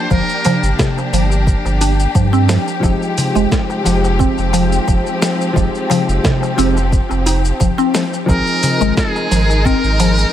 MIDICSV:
0, 0, Header, 1, 8, 480
1, 0, Start_track
1, 0, Tempo, 681818
1, 75, Time_signature, 4, 2, 24, 8
1, 7270, End_track
2, 0, Start_track
2, 0, Title_t, "Muted trumpet"
2, 0, Program_c, 0, 59
2, 0, Note_on_c, 0, 72, 108
2, 73, Note_off_c, 0, 72, 0
2, 77, Note_on_c, 0, 70, 101
2, 528, Note_off_c, 0, 70, 0
2, 5840, Note_on_c, 0, 70, 114
2, 6289, Note_off_c, 0, 70, 0
2, 6312, Note_on_c, 0, 68, 89
2, 6795, Note_on_c, 0, 70, 108
2, 6805, Note_off_c, 0, 68, 0
2, 7270, Note_off_c, 0, 70, 0
2, 7270, End_track
3, 0, Start_track
3, 0, Title_t, "Clean electric guitar"
3, 0, Program_c, 1, 27
3, 1978, Note_on_c, 1, 53, 83
3, 1989, Note_on_c, 1, 56, 72
3, 1995, Note_on_c, 1, 63, 76
3, 2007, Note_on_c, 1, 67, 93
3, 2679, Note_off_c, 1, 53, 0
3, 2685, Note_off_c, 1, 56, 0
3, 2688, Note_off_c, 1, 63, 0
3, 2694, Note_off_c, 1, 67, 0
3, 2702, Note_on_c, 1, 53, 77
3, 2711, Note_on_c, 1, 56, 73
3, 2719, Note_on_c, 1, 63, 71
3, 2727, Note_on_c, 1, 67, 84
3, 3881, Note_off_c, 1, 53, 0
3, 3886, Note_off_c, 1, 56, 0
3, 3890, Note_off_c, 1, 63, 0
3, 3894, Note_off_c, 1, 67, 0
3, 3895, Note_on_c, 1, 53, 96
3, 3903, Note_on_c, 1, 56, 86
3, 3914, Note_on_c, 1, 63, 82
3, 3926, Note_on_c, 1, 67, 96
3, 4598, Note_off_c, 1, 53, 0
3, 4602, Note_off_c, 1, 56, 0
3, 4607, Note_off_c, 1, 63, 0
3, 4613, Note_off_c, 1, 67, 0
3, 4622, Note_on_c, 1, 53, 78
3, 4626, Note_on_c, 1, 56, 69
3, 4630, Note_on_c, 1, 63, 67
3, 4635, Note_on_c, 1, 67, 78
3, 4768, Note_off_c, 1, 53, 0
3, 4770, Note_off_c, 1, 56, 0
3, 4772, Note_off_c, 1, 63, 0
3, 4775, Note_off_c, 1, 67, 0
3, 5816, Note_on_c, 1, 53, 85
3, 5825, Note_on_c, 1, 60, 82
3, 5836, Note_on_c, 1, 63, 80
3, 5843, Note_on_c, 1, 68, 96
3, 6518, Note_off_c, 1, 53, 0
3, 6523, Note_off_c, 1, 60, 0
3, 6529, Note_off_c, 1, 63, 0
3, 6532, Note_off_c, 1, 68, 0
3, 7270, End_track
4, 0, Start_track
4, 0, Title_t, "String section"
4, 0, Program_c, 2, 48
4, 0, Note_on_c, 2, 58, 71
4, 0, Note_on_c, 2, 62, 89
4, 0, Note_on_c, 2, 67, 93
4, 1968, Note_off_c, 2, 62, 0
4, 1969, Note_off_c, 2, 58, 0
4, 1993, Note_on_c, 2, 60, 75
4, 1994, Note_on_c, 2, 53, 77
4, 5806, Note_off_c, 2, 53, 0
4, 5806, Note_off_c, 2, 60, 0
4, 5807, Note_off_c, 2, 67, 0
4, 5834, Note_on_c, 2, 56, 81
4, 5837, Note_on_c, 2, 63, 77
4, 5839, Note_on_c, 2, 70, 85
4, 7270, Note_off_c, 2, 56, 0
4, 7270, Note_off_c, 2, 63, 0
4, 7270, Note_off_c, 2, 70, 0
4, 7270, End_track
5, 0, Start_track
5, 0, Title_t, "Synth pluck"
5, 0, Program_c, 3, 84
5, 75, Note_on_c, 3, 53, 85
5, 304, Note_off_c, 3, 53, 0
5, 318, Note_on_c, 3, 53, 105
5, 438, Note_off_c, 3, 53, 0
5, 560, Note_on_c, 3, 48, 86
5, 679, Note_off_c, 3, 48, 0
5, 797, Note_on_c, 3, 53, 74
5, 1264, Note_off_c, 3, 53, 0
5, 1274, Note_on_c, 3, 62, 78
5, 1396, Note_off_c, 3, 62, 0
5, 1513, Note_on_c, 3, 53, 90
5, 1629, Note_off_c, 3, 53, 0
5, 1640, Note_on_c, 3, 60, 104
5, 1748, Note_off_c, 3, 60, 0
5, 1750, Note_on_c, 3, 53, 83
5, 1981, Note_off_c, 3, 53, 0
5, 1991, Note_on_c, 3, 53, 77
5, 2114, Note_off_c, 3, 53, 0
5, 2361, Note_on_c, 3, 56, 81
5, 2426, Note_off_c, 3, 56, 0
5, 2712, Note_on_c, 3, 53, 79
5, 2942, Note_off_c, 3, 53, 0
5, 2951, Note_on_c, 3, 60, 80
5, 3074, Note_off_c, 3, 60, 0
5, 3190, Note_on_c, 3, 53, 102
5, 3314, Note_off_c, 3, 53, 0
5, 3433, Note_on_c, 3, 53, 83
5, 3555, Note_off_c, 3, 53, 0
5, 3674, Note_on_c, 3, 53, 80
5, 3903, Note_off_c, 3, 53, 0
5, 3915, Note_on_c, 3, 53, 81
5, 4144, Note_off_c, 3, 53, 0
5, 4152, Note_on_c, 3, 53, 107
5, 4275, Note_off_c, 3, 53, 0
5, 4396, Note_on_c, 3, 48, 87
5, 4517, Note_off_c, 3, 48, 0
5, 4631, Note_on_c, 3, 60, 96
5, 4755, Note_off_c, 3, 60, 0
5, 5112, Note_on_c, 3, 63, 73
5, 5235, Note_off_c, 3, 63, 0
5, 5351, Note_on_c, 3, 53, 82
5, 5468, Note_off_c, 3, 53, 0
5, 5479, Note_on_c, 3, 60, 110
5, 5587, Note_off_c, 3, 60, 0
5, 5589, Note_on_c, 3, 53, 77
5, 5821, Note_off_c, 3, 53, 0
5, 5833, Note_on_c, 3, 53, 83
5, 5955, Note_off_c, 3, 53, 0
5, 6201, Note_on_c, 3, 56, 82
5, 6266, Note_off_c, 3, 56, 0
5, 6555, Note_on_c, 3, 53, 74
5, 6784, Note_off_c, 3, 53, 0
5, 6795, Note_on_c, 3, 60, 77
5, 6916, Note_off_c, 3, 60, 0
5, 7038, Note_on_c, 3, 53, 108
5, 7158, Note_off_c, 3, 53, 0
5, 7270, End_track
6, 0, Start_track
6, 0, Title_t, "Sub bass"
6, 0, Program_c, 4, 38
6, 76, Note_on_c, 4, 31, 97
6, 160, Note_off_c, 4, 31, 0
6, 443, Note_on_c, 4, 31, 79
6, 517, Note_off_c, 4, 31, 0
6, 794, Note_on_c, 4, 31, 98
6, 1094, Note_off_c, 4, 31, 0
6, 1163, Note_on_c, 4, 31, 96
6, 1455, Note_off_c, 4, 31, 0
6, 1516, Note_on_c, 4, 43, 100
6, 1815, Note_off_c, 4, 43, 0
6, 1996, Note_on_c, 4, 29, 97
6, 2080, Note_off_c, 4, 29, 0
6, 2365, Note_on_c, 4, 29, 84
6, 2438, Note_off_c, 4, 29, 0
6, 2719, Note_on_c, 4, 29, 98
6, 3016, Note_off_c, 4, 29, 0
6, 3086, Note_on_c, 4, 29, 97
6, 3376, Note_off_c, 4, 29, 0
6, 3436, Note_on_c, 4, 29, 90
6, 3520, Note_off_c, 4, 29, 0
6, 3917, Note_on_c, 4, 29, 101
6, 4001, Note_off_c, 4, 29, 0
6, 4285, Note_on_c, 4, 29, 84
6, 4358, Note_off_c, 4, 29, 0
6, 4637, Note_on_c, 4, 29, 101
6, 4935, Note_off_c, 4, 29, 0
6, 5006, Note_on_c, 4, 29, 90
6, 5296, Note_off_c, 4, 29, 0
6, 5357, Note_on_c, 4, 29, 88
6, 5441, Note_off_c, 4, 29, 0
6, 5835, Note_on_c, 4, 32, 97
6, 5920, Note_off_c, 4, 32, 0
6, 6205, Note_on_c, 4, 32, 84
6, 6278, Note_off_c, 4, 32, 0
6, 6559, Note_on_c, 4, 32, 94
6, 6856, Note_off_c, 4, 32, 0
6, 6925, Note_on_c, 4, 32, 101
6, 7216, Note_off_c, 4, 32, 0
6, 7270, End_track
7, 0, Start_track
7, 0, Title_t, "Darbuka"
7, 324, Note_on_c, 9, 64, 96
7, 325, Note_on_c, 9, 63, 59
7, 395, Note_off_c, 9, 64, 0
7, 396, Note_off_c, 9, 63, 0
7, 688, Note_on_c, 9, 62, 52
7, 693, Note_on_c, 9, 63, 67
7, 758, Note_off_c, 9, 62, 0
7, 763, Note_off_c, 9, 63, 0
7, 915, Note_on_c, 9, 62, 56
7, 985, Note_off_c, 9, 62, 0
7, 1164, Note_on_c, 9, 63, 61
7, 1234, Note_off_c, 9, 63, 0
7, 1284, Note_on_c, 9, 63, 37
7, 1354, Note_off_c, 9, 63, 0
7, 1888, Note_on_c, 9, 63, 37
7, 1958, Note_off_c, 9, 63, 0
7, 2238, Note_on_c, 9, 64, 87
7, 2308, Note_off_c, 9, 64, 0
7, 2602, Note_on_c, 9, 62, 52
7, 2604, Note_on_c, 9, 63, 65
7, 2673, Note_off_c, 9, 62, 0
7, 2674, Note_off_c, 9, 63, 0
7, 2847, Note_on_c, 9, 62, 57
7, 2917, Note_off_c, 9, 62, 0
7, 3200, Note_on_c, 9, 62, 66
7, 3270, Note_off_c, 9, 62, 0
7, 3435, Note_on_c, 9, 62, 47
7, 3506, Note_off_c, 9, 62, 0
7, 3805, Note_on_c, 9, 63, 32
7, 3875, Note_off_c, 9, 63, 0
7, 4161, Note_on_c, 9, 64, 90
7, 4164, Note_on_c, 9, 63, 56
7, 4231, Note_off_c, 9, 64, 0
7, 4234, Note_off_c, 9, 63, 0
7, 4524, Note_on_c, 9, 62, 54
7, 4527, Note_on_c, 9, 63, 66
7, 4594, Note_off_c, 9, 62, 0
7, 4597, Note_off_c, 9, 63, 0
7, 4763, Note_on_c, 9, 62, 48
7, 4833, Note_off_c, 9, 62, 0
7, 5003, Note_on_c, 9, 63, 66
7, 5073, Note_off_c, 9, 63, 0
7, 5120, Note_on_c, 9, 63, 37
7, 5191, Note_off_c, 9, 63, 0
7, 5726, Note_on_c, 9, 63, 35
7, 5797, Note_off_c, 9, 63, 0
7, 6078, Note_on_c, 9, 64, 97
7, 6148, Note_off_c, 9, 64, 0
7, 6446, Note_on_c, 9, 62, 54
7, 6448, Note_on_c, 9, 63, 62
7, 6517, Note_off_c, 9, 62, 0
7, 6519, Note_off_c, 9, 63, 0
7, 6686, Note_on_c, 9, 62, 61
7, 6757, Note_off_c, 9, 62, 0
7, 7037, Note_on_c, 9, 62, 68
7, 7107, Note_off_c, 9, 62, 0
7, 7270, End_track
8, 0, Start_track
8, 0, Title_t, "Drums"
8, 75, Note_on_c, 9, 82, 45
8, 76, Note_on_c, 9, 36, 114
8, 145, Note_off_c, 9, 82, 0
8, 146, Note_off_c, 9, 36, 0
8, 204, Note_on_c, 9, 82, 26
8, 274, Note_off_c, 9, 82, 0
8, 314, Note_on_c, 9, 46, 90
8, 315, Note_on_c, 9, 82, 82
8, 385, Note_off_c, 9, 46, 0
8, 385, Note_off_c, 9, 82, 0
8, 445, Note_on_c, 9, 82, 37
8, 516, Note_off_c, 9, 82, 0
8, 555, Note_on_c, 9, 36, 111
8, 559, Note_on_c, 9, 38, 75
8, 559, Note_on_c, 9, 82, 43
8, 626, Note_off_c, 9, 36, 0
8, 629, Note_off_c, 9, 38, 0
8, 629, Note_off_c, 9, 82, 0
8, 688, Note_on_c, 9, 82, 22
8, 759, Note_off_c, 9, 82, 0
8, 799, Note_on_c, 9, 46, 80
8, 800, Note_on_c, 9, 82, 76
8, 870, Note_off_c, 9, 46, 0
8, 870, Note_off_c, 9, 82, 0
8, 926, Note_on_c, 9, 82, 34
8, 996, Note_off_c, 9, 82, 0
8, 1035, Note_on_c, 9, 36, 117
8, 1040, Note_on_c, 9, 82, 45
8, 1105, Note_off_c, 9, 36, 0
8, 1110, Note_off_c, 9, 82, 0
8, 1167, Note_on_c, 9, 82, 24
8, 1238, Note_off_c, 9, 82, 0
8, 1276, Note_on_c, 9, 46, 89
8, 1277, Note_on_c, 9, 82, 86
8, 1347, Note_off_c, 9, 46, 0
8, 1347, Note_off_c, 9, 82, 0
8, 1406, Note_on_c, 9, 82, 36
8, 1476, Note_off_c, 9, 82, 0
8, 1515, Note_on_c, 9, 36, 101
8, 1516, Note_on_c, 9, 82, 47
8, 1585, Note_off_c, 9, 36, 0
8, 1586, Note_off_c, 9, 82, 0
8, 1645, Note_on_c, 9, 82, 23
8, 1715, Note_off_c, 9, 82, 0
8, 1754, Note_on_c, 9, 38, 78
8, 1754, Note_on_c, 9, 46, 83
8, 1755, Note_on_c, 9, 82, 82
8, 1825, Note_off_c, 9, 38, 0
8, 1825, Note_off_c, 9, 46, 0
8, 1825, Note_off_c, 9, 82, 0
8, 1885, Note_on_c, 9, 82, 33
8, 1956, Note_off_c, 9, 82, 0
8, 1995, Note_on_c, 9, 36, 112
8, 1997, Note_on_c, 9, 82, 45
8, 2065, Note_off_c, 9, 36, 0
8, 2068, Note_off_c, 9, 82, 0
8, 2128, Note_on_c, 9, 82, 23
8, 2198, Note_off_c, 9, 82, 0
8, 2237, Note_on_c, 9, 46, 88
8, 2237, Note_on_c, 9, 82, 80
8, 2307, Note_off_c, 9, 46, 0
8, 2308, Note_off_c, 9, 82, 0
8, 2365, Note_on_c, 9, 82, 34
8, 2436, Note_off_c, 9, 82, 0
8, 2476, Note_on_c, 9, 36, 113
8, 2479, Note_on_c, 9, 38, 66
8, 2479, Note_on_c, 9, 82, 42
8, 2546, Note_off_c, 9, 36, 0
8, 2549, Note_off_c, 9, 38, 0
8, 2550, Note_off_c, 9, 82, 0
8, 2604, Note_on_c, 9, 82, 21
8, 2675, Note_off_c, 9, 82, 0
8, 2717, Note_on_c, 9, 46, 81
8, 2717, Note_on_c, 9, 82, 75
8, 2787, Note_off_c, 9, 46, 0
8, 2787, Note_off_c, 9, 82, 0
8, 2846, Note_on_c, 9, 82, 32
8, 2917, Note_off_c, 9, 82, 0
8, 2956, Note_on_c, 9, 36, 106
8, 2958, Note_on_c, 9, 82, 45
8, 3026, Note_off_c, 9, 36, 0
8, 3028, Note_off_c, 9, 82, 0
8, 3083, Note_on_c, 9, 82, 23
8, 3153, Note_off_c, 9, 82, 0
8, 3195, Note_on_c, 9, 46, 88
8, 3195, Note_on_c, 9, 82, 85
8, 3265, Note_off_c, 9, 46, 0
8, 3266, Note_off_c, 9, 82, 0
8, 3325, Note_on_c, 9, 82, 36
8, 3396, Note_off_c, 9, 82, 0
8, 3436, Note_on_c, 9, 36, 98
8, 3436, Note_on_c, 9, 82, 44
8, 3506, Note_off_c, 9, 36, 0
8, 3507, Note_off_c, 9, 82, 0
8, 3565, Note_on_c, 9, 82, 23
8, 3636, Note_off_c, 9, 82, 0
8, 3677, Note_on_c, 9, 38, 77
8, 3677, Note_on_c, 9, 46, 85
8, 3678, Note_on_c, 9, 82, 82
8, 3748, Note_off_c, 9, 38, 0
8, 3748, Note_off_c, 9, 46, 0
8, 3748, Note_off_c, 9, 82, 0
8, 3810, Note_on_c, 9, 82, 31
8, 3880, Note_off_c, 9, 82, 0
8, 3915, Note_on_c, 9, 36, 102
8, 3921, Note_on_c, 9, 82, 42
8, 3985, Note_off_c, 9, 36, 0
8, 3991, Note_off_c, 9, 82, 0
8, 4047, Note_on_c, 9, 82, 21
8, 4118, Note_off_c, 9, 82, 0
8, 4160, Note_on_c, 9, 46, 90
8, 4161, Note_on_c, 9, 82, 83
8, 4230, Note_off_c, 9, 46, 0
8, 4231, Note_off_c, 9, 82, 0
8, 4288, Note_on_c, 9, 82, 32
8, 4359, Note_off_c, 9, 82, 0
8, 4395, Note_on_c, 9, 36, 108
8, 4398, Note_on_c, 9, 38, 70
8, 4398, Note_on_c, 9, 82, 39
8, 4465, Note_off_c, 9, 36, 0
8, 4468, Note_off_c, 9, 38, 0
8, 4469, Note_off_c, 9, 82, 0
8, 4527, Note_on_c, 9, 82, 22
8, 4597, Note_off_c, 9, 82, 0
8, 4637, Note_on_c, 9, 46, 84
8, 4637, Note_on_c, 9, 82, 69
8, 4707, Note_off_c, 9, 46, 0
8, 4708, Note_off_c, 9, 82, 0
8, 4766, Note_on_c, 9, 82, 33
8, 4836, Note_off_c, 9, 82, 0
8, 4874, Note_on_c, 9, 36, 101
8, 4876, Note_on_c, 9, 82, 42
8, 4945, Note_off_c, 9, 36, 0
8, 4947, Note_off_c, 9, 82, 0
8, 5005, Note_on_c, 9, 82, 21
8, 5075, Note_off_c, 9, 82, 0
8, 5115, Note_on_c, 9, 46, 93
8, 5116, Note_on_c, 9, 82, 78
8, 5186, Note_off_c, 9, 46, 0
8, 5186, Note_off_c, 9, 82, 0
8, 5244, Note_on_c, 9, 82, 34
8, 5314, Note_off_c, 9, 82, 0
8, 5354, Note_on_c, 9, 36, 97
8, 5354, Note_on_c, 9, 82, 46
8, 5425, Note_off_c, 9, 36, 0
8, 5425, Note_off_c, 9, 82, 0
8, 5482, Note_on_c, 9, 82, 23
8, 5552, Note_off_c, 9, 82, 0
8, 5594, Note_on_c, 9, 38, 78
8, 5594, Note_on_c, 9, 46, 89
8, 5595, Note_on_c, 9, 82, 80
8, 5664, Note_off_c, 9, 38, 0
8, 5664, Note_off_c, 9, 46, 0
8, 5665, Note_off_c, 9, 82, 0
8, 5726, Note_on_c, 9, 82, 32
8, 5797, Note_off_c, 9, 82, 0
8, 5834, Note_on_c, 9, 36, 107
8, 5837, Note_on_c, 9, 82, 43
8, 5904, Note_off_c, 9, 36, 0
8, 5907, Note_off_c, 9, 82, 0
8, 5963, Note_on_c, 9, 82, 22
8, 6033, Note_off_c, 9, 82, 0
8, 6075, Note_on_c, 9, 46, 93
8, 6076, Note_on_c, 9, 82, 81
8, 6145, Note_off_c, 9, 46, 0
8, 6146, Note_off_c, 9, 82, 0
8, 6205, Note_on_c, 9, 82, 33
8, 6275, Note_off_c, 9, 82, 0
8, 6315, Note_on_c, 9, 36, 110
8, 6318, Note_on_c, 9, 38, 76
8, 6318, Note_on_c, 9, 82, 40
8, 6385, Note_off_c, 9, 36, 0
8, 6388, Note_off_c, 9, 38, 0
8, 6389, Note_off_c, 9, 82, 0
8, 6449, Note_on_c, 9, 82, 21
8, 6519, Note_off_c, 9, 82, 0
8, 6559, Note_on_c, 9, 46, 85
8, 6560, Note_on_c, 9, 82, 70
8, 6630, Note_off_c, 9, 46, 0
8, 6630, Note_off_c, 9, 82, 0
8, 6690, Note_on_c, 9, 82, 32
8, 6761, Note_off_c, 9, 82, 0
8, 6795, Note_on_c, 9, 36, 105
8, 6801, Note_on_c, 9, 82, 42
8, 6866, Note_off_c, 9, 36, 0
8, 6872, Note_off_c, 9, 82, 0
8, 6927, Note_on_c, 9, 82, 22
8, 6997, Note_off_c, 9, 82, 0
8, 7039, Note_on_c, 9, 46, 99
8, 7039, Note_on_c, 9, 82, 80
8, 7109, Note_off_c, 9, 46, 0
8, 7110, Note_off_c, 9, 82, 0
8, 7168, Note_on_c, 9, 82, 32
8, 7239, Note_off_c, 9, 82, 0
8, 7270, End_track
0, 0, End_of_file